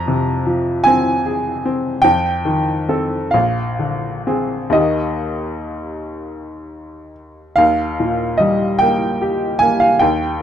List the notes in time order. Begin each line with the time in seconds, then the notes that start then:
Already playing: F2 A#5
0.08 C3
0.46 F3
0.84 C4 G#5
1.26 G#4
1.66 C4
2.02 F2 G5
2.45 D#3
2.89 C4 A4
3.31 A#1 F5
3.79 D3
4.27 C4 G#4
4.70 D#2 D#3 A#3 D#5
4.74 G4
7.56 D#2 F5
8.00 A#2
8.38 G3 D#5
8.79 A#3 G5
9.22 G4
9.59 A#3 G#5
9.80 F5
9.99 D#2 G5